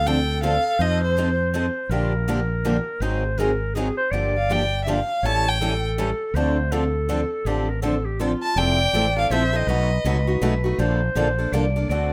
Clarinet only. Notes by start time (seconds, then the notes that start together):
Already playing: A4
0.80 C5
1.91 A#4
3.02 C5
3.39 A#4
3.75 G#4
3.98 C5
4.11 D5
5.23 C#5
5.61 A4
6.35 C5
6.72 A4
7.47 G4
7.69 A#4
7.82 A4
8.05 G4
8.20 F4
8.57 D5
9.31 C5
9.68 B4
10.06 B4
10.79 C5
11.53 D5
11.89 D5